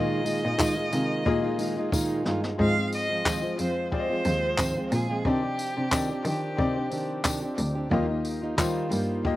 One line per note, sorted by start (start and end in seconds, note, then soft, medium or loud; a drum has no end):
0.00 0.25 A#2 medium
0.00 0.41 A#2 loud
0.00 0.23 D#3 medium
0.00 2.55 D#3 medium
0.00 0.24 G#3 medium
0.00 1.19 A#3 medium
0.00 2.56 A#3 medium
0.00 0.25 D#4 medium
0.00 1.20 D#4 medium
0.00 0.26 F4 medium
0.00 1.20 F4 medium
0.00 2.56 F4 medium
0.00 1.20 G#4 medium
0.00 2.57 G#4 medium
0.00 1.21 D#5 medium
0.00 1.94 D#5 loud
0.24 0.43 D#3 medium
0.24 0.44 G#3 medium
0.24 0.43 D#4 medium
0.24 0.42 F4 medium
0.24 tambourine medium
0.43 0.89 A#2 medium
0.43 0.57 G#3 soft
0.43 0.57 D#4 medium
0.43 0.58 F4 medium
0.57 0.77 A#2 medium
0.57 0.77 D#3 medium
0.57 0.77 G#3 medium
0.57 0.76 D#4 medium
0.57 0.75 F4 medium
0.57 kick loud
0.57 clap loud
0.57 tambourine medium
0.76 0.91 G#3 medium
0.76 0.91 D#4 soft
0.76 0.92 F4 medium
0.91 1.23 C3 medium
0.91 1.43 D#3 medium
0.91 1.44 G#3 medium
0.91 1.43 D#4 medium
0.91 1.41 F4 medium
0.91 tambourine medium
1.25 2.22 A#2 medium
1.25 2.53 A#3 loud
1.25 2.53 D#4 medium
1.25 2.53 F4 medium
1.25 2.53 G#4 medium
1.25 2.53 D#5 loud
1.25 kick loud
1.43 1.58 G#3 medium
1.43 1.59 D#4 medium
1.43 1.58 F4 medium
1.58 1.77 D#3 medium
1.58 1.78 G#3 medium
1.58 1.77 D#4 medium
1.58 1.76 F4 medium
1.58 tambourine medium
1.77 1.92 G#3 soft
1.77 1.92 D#4 medium
1.77 1.92 F4 medium
1.92 2.25 A#2 medium
1.92 2.24 D#3 medium
1.92 2.24 G#3 medium
1.92 2.26 D#4 medium
1.92 2.27 F4 medium
1.92 kick loud
1.92 tambourine medium
2.25 2.57 G2 medium
2.25 2.44 D#3 medium
2.25 2.44 G#3 medium
2.25 2.44 D#4 medium
2.25 2.42 F4 medium
2.25 snare loud
2.44 2.58 G#3 soft
2.44 2.59 D#4 medium
2.44 snare loud
2.58 2.77 G#2 medium
2.58 3.55 G#2 loud
2.58 2.77 D#3 medium
2.58 7.88 F3 medium
2.58 2.77 F3 medium
2.58 5.23 G#3 medium
2.58 2.78 G#3 medium
2.58 3.22 C4 medium
2.58 7.88 C4 medium
2.58 2.77 C4 medium
2.58 3.22 F4 medium
2.58 5.23 F4 medium
2.58 2.76 F4 medium
2.58 3.22 G#4 medium
2.58 3.23 D#5 medium
2.58 2.91 F5 loud
2.58 kick loud
2.78 3.10 F3 soft
2.78 3.10 G#3 soft
2.78 3.09 C4 soft
2.92 3.56 D#5 loud
2.92 tambourine medium
3.09 3.25 F3 soft
3.09 3.25 G#3 soft
3.09 3.25 C4 soft
3.09 3.25 F4 medium
3.25 3.44 G#2 medium
3.25 3.44 D#3 medium
3.25 3.44 F3 medium
3.25 3.43 G#3 medium
3.25 3.89 C4 medium
3.25 3.42 C4 medium
3.25 3.89 F4 medium
3.25 3.41 F4 medium
3.25 3.90 G#4 medium
3.25 3.90 D#5 medium
3.25 kick loud
3.25 clap loud
3.25 tambourine medium
3.42 3.57 F3 soft
3.42 3.58 G#3 soft
3.42 3.58 C4 soft
3.42 3.58 F4 soft
3.58 4.22 F2 medium
3.58 4.10 F3 medium
3.58 4.10 G#3 medium
3.58 4.09 C4 medium
3.58 4.08 F4 medium
3.58 3.91 C5 medium
3.58 tambourine medium
3.92 5.19 C4 medium
3.92 5.19 F4 medium
3.92 5.19 G#4 medium
3.92 4.89 C5 loud
3.92 4.00 D5 medium
3.92 kick loud
3.99 5.23 D#5 medium
4.10 4.24 F3 soft
4.10 4.25 G#3 soft
4.10 4.26 C4 soft
4.10 4.25 F4 medium
4.25 4.88 D#2 medium
4.25 4.58 F3 medium
4.25 4.59 G#3 medium
4.25 4.59 C4 medium
4.25 4.59 F4 medium
4.25 tambourine medium
4.58 4.77 G#2 medium
4.58 4.77 D#3 medium
4.58 4.77 F3 medium
4.58 4.77 G#3 medium
4.58 4.76 C4 medium
4.58 4.75 F4 medium
4.58 kick loud
4.58 clap loud
4.58 tambourine medium
4.76 5.11 F3 soft
4.76 5.10 G#3 soft
4.76 5.09 C4 medium
4.76 5.08 F4 soft
4.92 5.23 A#2 medium
4.92 5.29 G#4 medium
4.92 tambourine medium
5.09 5.25 F3 soft
5.09 5.26 G#3 medium
5.09 5.25 C4 medium
5.09 5.25 F4 medium
5.24 5.44 C3 medium
5.24 5.73 C3 medium
5.24 5.44 D#3 medium
5.24 5.88 C4 medium
5.24 5.44 C4 medium
5.24 5.44 D4 medium
5.24 5.89 D#4 medium
5.24 9.36 G4 medium
5.24 5.89 G4 medium
5.24 5.42 G4 medium
5.24 6.27 G4 medium
5.24 7.89 D5 medium
5.24 5.89 D5 medium
5.24 kick loud
5.43 5.78 C4 soft
5.43 5.76 D4 soft
5.43 5.75 G4 soft
5.59 tambourine medium
5.76 6.21 C3 medium
5.76 5.91 C4 soft
5.76 5.91 D4 soft
5.76 5.92 G4 medium
5.91 6.10 C3 medium
5.91 6.10 D#3 medium
5.91 6.55 C4 medium
5.91 6.10 C4 medium
5.91 6.10 D4 medium
5.91 6.55 D#4 medium
5.91 6.55 G4 medium
5.91 6.08 G4 medium
5.91 6.56 D5 medium
5.91 kick loud
5.91 clap loud
5.91 tambourine medium
6.09 6.24 C4 soft
6.09 6.25 D4 soft
6.09 6.25 G4 medium
6.24 6.56 D#3 medium
6.24 6.77 D#3 medium
6.24 6.77 C4 medium
6.24 6.77 D4 medium
6.24 6.75 G4 medium
6.24 tambourine medium
6.29 7.23 G4 medium
6.57 7.54 C3 loud
6.57 7.85 C4 medium
6.57 7.85 D#4 medium
6.57 7.85 G4 medium
6.57 7.86 D5 medium
6.57 kick loud
6.76 6.91 C4 soft
6.76 6.92 D4 soft
6.76 6.92 G4 medium
6.91 7.23 D#3 medium
6.91 7.23 C4 medium
6.91 7.24 D4 medium
6.91 7.24 G4 medium
6.91 tambourine medium
7.23 7.43 C3 medium
7.23 7.43 D#3 medium
7.23 7.43 C4 medium
7.23 7.43 D4 medium
7.23 7.41 G4 medium
7.23 kick loud
7.23 clap loud
7.23 tambourine medium
7.42 7.77 C4 soft
7.42 7.76 D4 medium
7.42 7.74 G4 medium
7.58 7.89 D2 medium
7.58 tambourine medium
7.75 7.90 C4 soft
7.75 7.91 D4 medium
7.75 7.91 G4 medium
7.89 8.87 D#2 loud
7.89 8.09 D#3 medium
7.89 9.36 F3 medium
7.89 8.09 G3 medium
7.89 8.10 A#3 medium
7.89 8.55 A#3 medium
7.89 9.36 A#3 medium
7.89 8.09 D#4 medium
7.89 9.36 D#4 medium
7.89 8.07 F4 loud
7.89 8.55 F4 medium
7.89 8.56 G4 medium
7.89 kick loud
7.93 8.56 D#5 medium
8.09 8.43 A#3 soft
8.09 8.42 D#4 medium
8.09 8.40 F4 medium
8.25 tambourine medium
8.42 8.56 A#3 medium
8.42 8.57 D#4 medium
8.42 8.57 F4 medium
8.57 8.91 D#3 medium
8.57 8.89 G3 medium
8.57 8.90 A#3 medium
8.57 9.22 A#3 medium
8.57 8.91 D#4 medium
8.57 8.92 F4 loud
8.57 9.22 F4 medium
8.57 9.22 G4 medium
8.57 9.22 C5 medium
8.57 kick loud
8.57 clap loud
8.57 tambourine medium
8.90 9.36 G2 medium
8.90 9.36 G3 medium
8.90 9.36 A#3 medium
8.90 9.36 D#4 medium
8.90 9.36 F4 medium
8.90 tambourine medium
9.24 9.36 A#3 medium
9.24 9.36 F4 medium
9.24 9.36 G4 medium
9.24 9.36 D#5 medium
9.24 kick loud